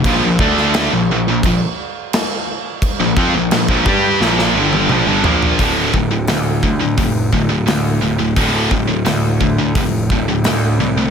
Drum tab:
CC |x---x---x---x---|x---x-----------|----------------|----------------|
HH |----------------|----------------|o---o---o---o---|o---o---o---o---|
SD |---oo-------o---|----o---oo------|----o-------o---|----o-------o---|
T1 |----------------|-----------o----|----------------|----------------|
T2 |----------------|------------o---|----------------|----------------|
FT |----------------|--------------oo|----------------|----------------|
BD |o-o-----o-------|o-o--oo---------|o-o---o-o-o-----|o-o---o-o-o-----|